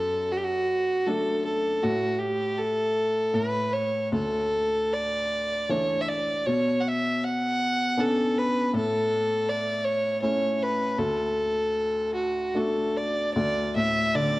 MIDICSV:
0, 0, Header, 1, 3, 480
1, 0, Start_track
1, 0, Key_signature, 2, "major"
1, 0, Tempo, 756620
1, 1144, Time_signature, 3, 2, 24, 8
1, 1623, Tempo, 779221
1, 4023, Tempo, 751880
1, 6903, Tempo, 792602
1, 8980, End_track
2, 0, Start_track
2, 0, Title_t, "Fiddle"
2, 0, Program_c, 0, 110
2, 0, Note_on_c, 0, 69, 74
2, 204, Note_on_c, 0, 66, 67
2, 214, Note_off_c, 0, 69, 0
2, 236, Note_on_c, 0, 67, 60
2, 246, Note_off_c, 0, 66, 0
2, 276, Note_on_c, 0, 66, 73
2, 286, Note_off_c, 0, 67, 0
2, 676, Note_on_c, 0, 69, 77
2, 685, Note_off_c, 0, 66, 0
2, 911, Note_off_c, 0, 69, 0
2, 920, Note_on_c, 0, 69, 73
2, 1163, Note_on_c, 0, 66, 74
2, 1172, Note_off_c, 0, 69, 0
2, 1390, Note_on_c, 0, 67, 67
2, 1400, Note_off_c, 0, 66, 0
2, 1637, Note_on_c, 0, 69, 74
2, 1646, Note_off_c, 0, 67, 0
2, 2105, Note_on_c, 0, 71, 68
2, 2114, Note_off_c, 0, 69, 0
2, 2345, Note_on_c, 0, 73, 65
2, 2355, Note_off_c, 0, 71, 0
2, 2584, Note_off_c, 0, 73, 0
2, 2602, Note_on_c, 0, 69, 73
2, 3088, Note_on_c, 0, 74, 76
2, 3097, Note_off_c, 0, 69, 0
2, 3561, Note_on_c, 0, 73, 74
2, 3570, Note_off_c, 0, 74, 0
2, 3749, Note_on_c, 0, 76, 58
2, 3759, Note_off_c, 0, 73, 0
2, 3794, Note_on_c, 0, 74, 74
2, 3804, Note_off_c, 0, 76, 0
2, 4029, Note_on_c, 0, 73, 76
2, 4039, Note_off_c, 0, 74, 0
2, 4246, Note_on_c, 0, 78, 57
2, 4256, Note_off_c, 0, 73, 0
2, 4296, Note_on_c, 0, 76, 74
2, 4306, Note_off_c, 0, 78, 0
2, 4524, Note_on_c, 0, 78, 84
2, 4533, Note_off_c, 0, 76, 0
2, 5010, Note_on_c, 0, 69, 78
2, 5019, Note_off_c, 0, 78, 0
2, 5254, Note_on_c, 0, 71, 74
2, 5264, Note_off_c, 0, 69, 0
2, 5481, Note_off_c, 0, 71, 0
2, 5496, Note_on_c, 0, 69, 79
2, 5963, Note_on_c, 0, 74, 76
2, 5972, Note_off_c, 0, 69, 0
2, 6185, Note_on_c, 0, 73, 76
2, 6195, Note_off_c, 0, 74, 0
2, 6421, Note_off_c, 0, 73, 0
2, 6427, Note_on_c, 0, 73, 76
2, 6686, Note_on_c, 0, 71, 69
2, 6695, Note_off_c, 0, 73, 0
2, 6914, Note_on_c, 0, 69, 70
2, 6923, Note_off_c, 0, 71, 0
2, 7619, Note_off_c, 0, 69, 0
2, 7623, Note_on_c, 0, 66, 57
2, 7869, Note_on_c, 0, 69, 60
2, 7878, Note_off_c, 0, 66, 0
2, 8116, Note_on_c, 0, 74, 61
2, 8125, Note_off_c, 0, 69, 0
2, 8338, Note_off_c, 0, 74, 0
2, 8342, Note_on_c, 0, 74, 71
2, 8567, Note_off_c, 0, 74, 0
2, 8597, Note_on_c, 0, 76, 72
2, 8831, Note_on_c, 0, 74, 77
2, 8840, Note_off_c, 0, 76, 0
2, 8980, Note_off_c, 0, 74, 0
2, 8980, End_track
3, 0, Start_track
3, 0, Title_t, "Felt piano"
3, 0, Program_c, 1, 0
3, 0, Control_c, 1, 64, 127
3, 0, Note_on_c, 1, 42, 54
3, 675, Note_on_c, 1, 54, 41
3, 680, Note_on_c, 1, 57, 38
3, 683, Note_on_c, 1, 62, 43
3, 1125, Note_off_c, 1, 42, 0
3, 1135, Note_off_c, 1, 54, 0
3, 1137, Note_off_c, 1, 57, 0
3, 1139, Note_off_c, 1, 62, 0
3, 1153, Control_c, 1, 64, 0
3, 1163, Note_on_c, 1, 45, 54
3, 1274, Control_c, 1, 64, 127
3, 2085, Note_off_c, 1, 45, 0
3, 2103, Note_on_c, 1, 45, 47
3, 2109, Control_c, 1, 64, 0
3, 2229, Control_c, 1, 64, 127
3, 2570, Note_off_c, 1, 45, 0
3, 2587, Note_on_c, 1, 38, 52
3, 2590, Control_c, 1, 64, 0
3, 2715, Control_c, 1, 64, 127
3, 3554, Note_on_c, 1, 52, 35
3, 3559, Note_on_c, 1, 57, 35
3, 3560, Note_on_c, 1, 62, 42
3, 4000, Note_off_c, 1, 38, 0
3, 4012, Note_off_c, 1, 52, 0
3, 4014, Note_off_c, 1, 57, 0
3, 4015, Note_off_c, 1, 62, 0
3, 4030, Control_c, 1, 64, 0
3, 4031, Note_on_c, 1, 47, 50
3, 4140, Control_c, 1, 64, 127
3, 4995, Note_on_c, 1, 59, 39
3, 4995, Note_on_c, 1, 61, 37
3, 5000, Note_on_c, 1, 62, 43
3, 5447, Note_off_c, 1, 47, 0
3, 5457, Note_off_c, 1, 59, 0
3, 5458, Note_off_c, 1, 61, 0
3, 5460, Note_off_c, 1, 62, 0
3, 5477, Control_c, 1, 64, 0
3, 5480, Note_on_c, 1, 45, 56
3, 5595, Control_c, 1, 64, 127
3, 6429, Note_on_c, 1, 61, 36
3, 6431, Note_on_c, 1, 57, 38
3, 6433, Note_on_c, 1, 64, 43
3, 6883, Note_off_c, 1, 45, 0
3, 6895, Note_off_c, 1, 57, 0
3, 6895, Note_off_c, 1, 61, 0
3, 6897, Note_off_c, 1, 64, 0
3, 6909, Control_c, 1, 64, 0
3, 6914, Note_on_c, 1, 38, 53
3, 6997, Control_c, 1, 64, 127
3, 7859, Note_on_c, 1, 57, 36
3, 7861, Note_on_c, 1, 62, 35
3, 7868, Note_on_c, 1, 66, 41
3, 8333, Note_off_c, 1, 38, 0
3, 8335, Note_off_c, 1, 57, 0
3, 8336, Note_off_c, 1, 62, 0
3, 8340, Note_off_c, 1, 66, 0
3, 8353, Note_on_c, 1, 38, 54
3, 8360, Control_c, 1, 64, 0
3, 8459, Control_c, 1, 64, 127
3, 8594, Note_on_c, 1, 45, 48
3, 8829, Note_on_c, 1, 50, 47
3, 8980, Note_off_c, 1, 38, 0
3, 8980, Note_off_c, 1, 45, 0
3, 8980, Note_off_c, 1, 50, 0
3, 8980, End_track
0, 0, End_of_file